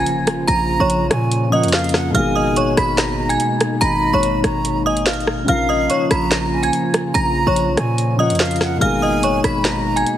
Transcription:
Already playing: grand piano C#3 F3 A#3 F4 A#4, analog synth pad C#3 F3 A#3 F4, synth bell G#5 G#6, impact
0.06 closed hi-hat
0.27 cross-stick, closed hi-hat
0.48 808-style bass A#1, synth bell A#5 A#6, flute A#5, closed hi-hat
0.80 808-style bass A#1, synth bell C#5 C#6
0.90 closed hi-hat
1.01 808-style bass B1
1.11 808-style bass A#2, flute G#5, cross-stick, closed hi-hat
1.31 closed hi-hat
1.50 grand piano C#3 F3 A#3 F4 A#4, synth bell D#5 D#6, flute F#5
1.63 808-style bass F2, closed hi-hat
1.68 closed hi-hat
1.73 flute F5, synth bell F5 F6, snare, clap, closed hi-hat
1.79 closed hi-hat
1.84 closed hi-hat
1.89 closed hi-hat
1.94 flute F#5, cross-stick, snare
2.10 grand piano B2 G#3 A#3
2.15 808-style bass G#1, analog synth pad B2 G#3 D#4, grand piano D#4 G#4, synth bell F5 F6, flute G#5, closed hi-hat
2.35 synth bell D#5 D#6
2.56 synth bell C#5 C#6, closed hi-hat
2.77 808-style bass G#1, synth bell B5 B6, flute B5, cross-stick, closed hi-hat
2.98 synth bell A#5 A#6, snare, clap, closed hi-hat
3.19 flute A#5
3.29 synth bell G#5 G#6, closed hi-hat
3.40 closed hi-hat
3.61 cross-stick, closed hi-hat
3.81 808-style bass G#1, synth bell A#5 A#6, flute B5, closed hi-hat
4.13 808-style bass G#1, synth bell C#5 C#6
4.23 closed hi-hat
4.44 808-style bass G#1, flute A#5, cross-stick, closed hi-hat
4.65 closed hi-hat
4.86 synth bell D#5 D#6, flute G#5
4.97 closed hi-hat
5.06 synth bell F5 F6, snare, clap, closed hi-hat
5.13 closed hi-hat
5.20 closed hi-hat
5.27 cross-stick
5.44 808-style bass A#1, grand piano C#3 F3 A#3, flute F5, closed hi-hat
5.48 analog synth pad C#3 F3 F4, grand piano F4 A#4, synth bell F5 F6
5.69 synth bell D#5 D#6
5.90 synth bell C#5 C#6, closed hi-hat
6.11 808-style bass A#1, flute A#5, synth bell B5 B6, cross-stick, closed hi-hat
6.31 synth bell A#5 A#6, snare, clap, closed hi-hat
6.53 flute G#5
6.63 synth bell G#5 G#6, closed hi-hat
6.73 closed hi-hat
6.94 cross-stick, closed hi-hat
7.14 808-style bass A#1, synth bell A#5 A#6, flute A#5, closed hi-hat
7.47 808-style bass A#1, synth bell C#5 C#6
7.56 closed hi-hat
7.68 808-style bass B1
7.77 808-style bass A#2, flute G#5, cross-stick, closed hi-hat
7.98 closed hi-hat
8.17 grand piano C#3 F3 A#3 F4 A#4, synth bell D#5 D#6, flute F#5
8.30 808-style bass F2, closed hi-hat
8.35 closed hi-hat
8.40 flute F5, synth bell F5 F6, snare, clap, closed hi-hat
8.45 closed hi-hat
8.51 closed hi-hat
8.56 closed hi-hat
8.61 flute F#5, cross-stick, snare
8.77 grand piano B2 G#3 A#3
8.81 808-style bass G#1, analog synth pad B2 G#3 A#3 D#4, grand piano D#4 G#4, synth bell F5 F6, flute G#5, closed hi-hat
9.02 synth bell D#5 D#6
9.23 synth bell C#5 C#6, closed hi-hat
9.44 808-style bass G#1, synth bell B5 B6, flute B5, cross-stick, closed hi-hat
9.65 synth bell A#5 A#6, snare, clap, closed hi-hat
9.86 flute A#5
9.96 synth bell G#5 G#6, closed hi-hat
10.06 closed hi-hat

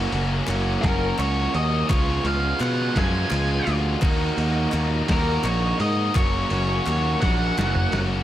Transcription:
Already playing: overdriven electric guitar F#2 C#3 F#3 A#3 C#4 F#4, tonewheel organ A#4 G#5 A#5 C#6
0.12 picked electric bass F#1, overdriven electric guitar F#3 A#3 C#4 F#4, ride
0.47 picked electric bass F#1, overdriven electric guitar F#3 A#3 C#4 F#4, clap, ride
0.82 picked electric bass F#1, distorted electric guitar F#2 C#3, overdriven electric guitar F#3 A#3 C#4 F#4, lead electric guitar A#4, kick, snare, ride
1.18 picked electric bass C#2, overdriven electric guitar F#3 A#3 C#4 F#4, lead electric guitar C#5, clap, ride
1.54 picked electric bass D#2, overdriven electric guitar F#3 A#3 C#4 F#4, lead electric guitar D#5, ride
1.88 picked electric bass C#2, overdriven electric guitar C#3 F3 G#3 B3 F4, distorted electric guitar C#4, tonewheel organ B4, lead electric guitar C#5, kick, clap, ride
2.24 picked electric bass C#2, overdriven electric guitar G#3 B3 F4, distorted electric guitar C#4, lead electric guitar F5, ride
2.59 picked electric bass B2, overdriven electric guitar F3 G#3 B3 F4, lead electric guitar F#5, clap, ride
2.94 picked electric bass F#2, distorted electric guitar C#3 F3 C#4, overdriven electric guitar G#3 B3 F4, kick, snare, ride
2.98 lead electric guitar G#5
3.13 clap
3.31 picked electric bass C#2, overdriven electric guitar F3 G#3 B3 F4, distorted electric guitar C#4, clap, ride
3.64 picked electric bass D2, overdriven electric guitar G#3 B3 F4, distorted electric guitar C#4, ride
4.01 picked electric bass D#2, overdriven electric guitar D#3 A#3 D#4 F#4, tonewheel organ A#4 D#5 D#6, kick, clap, crash
4.37 picked electric bass D#2, overdriven electric guitar A#3 D#4 F#4, ride
4.72 picked electric bass D#2, overdriven electric guitar D#3 A#3 D#4 F#4, clap, ride
5.08 picked electric bass D#2, distorted electric guitar D#3, overdriven electric guitar A#3 D#4 F#4, kick, snare, ride
5.12 lead electric guitar A#4
5.26 clap
5.43 picked electric bass A#1, overdriven electric guitar D#3 A#3 D#4 F#4, lead electric guitar C#5, clap, ride
5.79 picked electric bass G#2, overdriven electric guitar A#3 D#4 F#4, lead electric guitar D#5, ride
6.15 picked electric bass F#1, overdriven electric guitar F#2 C#3 F#3 A#3 C#4 F#4, lead electric guitar C#5, tonewheel organ F#5 C#6, kick, clap, ride
6.50 picked electric bass F#1, overdriven electric guitar F#3 A#3 C#4 F#4, ride
6.86 picked electric bass D#2, overdriven electric guitar F#3 A#3 C#4 F#4, clap, ride
7.21 picked electric bass A#1, distorted electric guitar F#2 C#3, overdriven electric guitar F#3 A#3 C#4 F#4, lead electric guitar F#5, kick, snare, ride
7.58 picked electric bass F#1, overdriven electric guitar F#3 A#3 C#4 F#4, snare, clap, ride
7.75 clap, mid tom
7.92 picked electric bass F#1, overdriven electric guitar F#3 A#3 C#4 F#4, snare, clap, ride

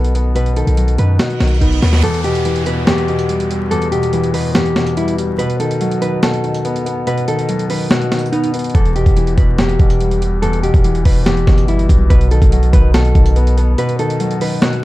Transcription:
Already playing: 808-style bass B1, felt piano B2 D#3 F#3 B3, clean electric guitar A4
0.04 closed hi-hat
0.14 felt piano B3, closed hi-hat
0.35 felt piano B2, clean electric guitar B4, closed hi-hat
0.46 closed hi-hat
0.56 felt piano D#3, clean electric guitar A4, closed hi-hat
0.67 808-style bass B1, closed hi-hat
0.77 felt piano F#3, closed hi-hat
0.88 closed hi-hat
0.98 808-style bass F#2, felt piano D#3, clean electric guitar B4, closed hi-hat
1.19 felt piano B2, clean electric guitar F#4, snare, closed hi-hat, reverse cymbal
1.30 closed hi-hat
1.40 808-style bass B1, felt piano D#3, snare, closed hi-hat
1.47 closed hi-hat
1.54 closed hi-hat
1.61 felt piano B3, clean electric guitar D#4, kick, closed hi-hat
1.72 closed hi-hat
1.82 808-style bass D#2, felt piano B3, snare, closed hi-hat
1.88 closed hi-hat
1.93 snare, closed hi-hat
1.98 closed hi-hat
2.03 felt piano E2, clean electric guitar A4, closed hi-hat, downlifter
2.14 closed hi-hat
2.24 felt piano B2, clean electric guitar G4, closed hi-hat
2.35 closed hi-hat
2.45 felt piano E3, closed hi-hat
2.56 closed hi-hat
2.66 felt piano B2, clean electric guitar B4, closed hi-hat
2.87 felt piano E2, clean electric guitar G4, snare, closed hi-hat
2.98 closed hi-hat
3.08 felt piano B2, closed hi-hat
3.19 closed hi-hat
3.29 felt piano G3, closed hi-hat
3.40 closed hi-hat
3.50 felt piano G3, closed hi-hat
3.71 felt piano E2, clean electric guitar A4, closed hi-hat
3.82 closed hi-hat
3.92 felt piano B2, clean electric guitar G4, closed hi-hat
4.03 closed hi-hat
4.13 felt piano E3, closed hi-hat
4.24 closed hi-hat
4.34 felt piano B2, clean electric guitar B4, open hi-hat
4.55 felt piano E2, clean electric guitar G4, snare, closed hi-hat
4.66 closed hi-hat
4.76 felt piano B2, snare, closed hi-hat
4.87 closed hi-hat
4.97 felt piano G3, clean electric guitar E4, closed hi-hat
5.08 closed hi-hat
5.18 felt piano G3, closed hi-hat
5.38 felt piano B2, clean electric guitar B4, closed hi-hat
5.50 closed hi-hat
5.60 felt piano D#3, clean electric guitar A4, closed hi-hat
5.71 closed hi-hat
5.81 felt piano F#3, closed hi-hat
5.91 closed hi-hat
6.02 felt piano D#3, clean electric guitar B4, closed hi-hat
6.23 felt piano B2, clean electric guitar A4, snare, closed hi-hat
6.34 closed hi-hat
6.44 felt piano D#3, closed hi-hat
6.54 closed hi-hat
6.65 felt piano B3, closed hi-hat
6.76 closed hi-hat
6.86 felt piano B3, closed hi-hat
7.07 felt piano B2, clean electric guitar B4, closed hi-hat
7.17 closed hi-hat
7.28 felt piano D#3, clean electric guitar A4, closed hi-hat
7.39 closed hi-hat
7.49 felt piano F#3, closed hi-hat
7.59 closed hi-hat
7.70 felt piano D#3, clean electric guitar B4, open hi-hat
7.90 felt piano B2, clean electric guitar F#4, snare, closed hi-hat
8.01 closed hi-hat
8.12 felt piano D#3, snare, closed hi-hat
8.19 closed hi-hat
8.26 closed hi-hat
8.32 felt piano B3, clean electric guitar D#4, closed hi-hat
8.44 closed hi-hat
8.54 felt piano B3, closed hi-hat
8.59 closed hi-hat
8.64 closed hi-hat
8.69 closed hi-hat
8.75 808-style bass E1, felt piano E2, clean electric guitar A4, kick, closed hi-hat
8.85 closed hi-hat
8.96 felt piano B2, clean electric guitar G4, closed hi-hat
9.06 808-style bass E1, kick, closed hi-hat
9.17 felt piano E3, closed hi-hat
9.27 closed hi-hat
9.38 808-style bass E1, felt piano B2, clean electric guitar B4, kick, closed hi-hat
9.58 felt piano E2, clean electric guitar G4, snare, closed hi-hat
9.69 closed hi-hat
9.79 808-style bass E1, felt piano B2, kick, closed hi-hat
9.90 closed hi-hat
10.00 felt piano G3, closed hi-hat
10.11 closed hi-hat
10.21 felt piano G3, closed hi-hat
10.42 felt piano E2, clean electric guitar A4, closed hi-hat
10.53 closed hi-hat
10.63 felt piano B2, clean electric guitar G4, closed hi-hat
10.74 808-style bass E1, kick, closed hi-hat
10.84 felt piano E3, closed hi-hat
10.95 closed hi-hat
11.05 808-style bass E1, felt piano B2, clean electric guitar B4, kick, open hi-hat
11.26 felt piano E2, clean electric guitar G4, snare, closed hi-hat
11.37 closed hi-hat
11.47 808-style bass G1, felt piano B2, kick, snare, closed hi-hat
11.58 closed hi-hat
11.68 felt piano G3, clean electric guitar E4, closed hi-hat
11.79 closed hi-hat
11.89 808-style bass B1, felt piano G3, kick, closed hi-hat
12.10 808-style bass B1, felt piano B2, clean electric guitar B4, kick, closed hi-hat
12.21 closed hi-hat
12.31 felt piano D#3, clean electric guitar A4, closed hi-hat
12.42 808-style bass B1, kick, closed hi-hat
12.52 felt piano F#3, closed hi-hat
12.63 closed hi-hat
12.73 808-style bass B1, felt piano D#3, clean electric guitar B4, kick, closed hi-hat
12.94 felt piano B2, clean electric guitar A4, snare, closed hi-hat
13.05 closed hi-hat
13.15 808-style bass B1, felt piano D#3, kick, closed hi-hat
13.26 closed hi-hat
13.36 felt piano B3, closed hi-hat
13.47 closed hi-hat
13.57 felt piano B3, closed hi-hat
13.78 felt piano B2, clean electric guitar B4, closed hi-hat
13.89 closed hi-hat
13.99 felt piano D#3, clean electric guitar A4, closed hi-hat
14.10 closed hi-hat
14.20 felt piano F#3, closed hi-hat
14.31 closed hi-hat
14.41 felt piano D#3, clean electric guitar B4, open hi-hat
14.62 felt piano B2, clean electric guitar F#4, snare
14.73 closed hi-hat

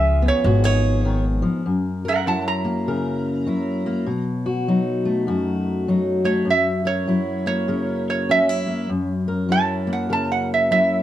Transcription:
Already playing: upright bass C#2, steel-string acoustic guitar F3 F4 G#4, resonator guitar played with a steel bar E5
0.22 steel-string acoustic guitar B3
0.28 resonator guitar played with a steel bar C#5
0.44 upright bass G#1, steel-string acoustic guitar G#2 F#4
0.64 steel-string acoustic guitar G#4, resonator guitar played with a steel bar C#5
1.05 steel-string acoustic guitar D#3
1.42 steel-string acoustic guitar F3
1.66 steel-string acoustic guitar F#2
2.05 steel-string acoustic guitar A#4, resonator guitar played with a steel bar A#4
2.09 resonator guitar played with a steel bar F#5
2.27 steel-string acoustic guitar F#3 E4, resonator guitar played with a steel bar F#5 A5
2.48 resonator guitar played with a steel bar A#5
2.64 steel-string acoustic guitar A#3
2.88 steel-string acoustic guitar C#3 A#4
3.46 steel-string acoustic guitar F#3 E4
3.86 steel-string acoustic guitar A#3
4.06 steel-string acoustic guitar B2
4.46 steel-string acoustic guitar F#4
4.68 steel-string acoustic guitar F#3 D#4
5.05 steel-string acoustic guitar A3
5.27 steel-string acoustic guitar F#2 F#4
5.88 steel-string acoustic guitar F#3 D#4
6.24 steel-string acoustic guitar A3, resonator guitar played with a steel bar C#5
6.45 steel-string acoustic guitar F#2
6.50 resonator guitar played with a steel bar E5
6.85 steel-string acoustic guitar A#4, resonator guitar played with a steel bar C#5
7.07 steel-string acoustic guitar F#3 E4
7.46 steel-string acoustic guitar A#3, resonator guitar played with a steel bar C#5
7.68 steel-string acoustic guitar C#3 A#4
8.10 resonator guitar played with a steel bar C#5
8.29 steel-string acoustic guitar F#3 C#4, resonator guitar played with a steel bar E5
8.49 steel-string acoustic guitar E4
8.66 steel-string acoustic guitar A#3
8.89 steel-string acoustic guitar F#2
9.28 steel-string acoustic guitar A#4
9.49 steel-string acoustic guitar F#3 E4, resonator guitar played with a steel bar A5
9.87 steel-string acoustic guitar A#3
9.93 resonator guitar played with a steel bar F#5
10.09 steel-string acoustic guitar C#3 A#4, resonator guitar played with a steel bar A5
10.32 resonator guitar played with a steel bar F#5
10.54 resonator guitar played with a steel bar E5
10.71 steel-string acoustic guitar F#3 E4, resonator guitar played with a steel bar E5

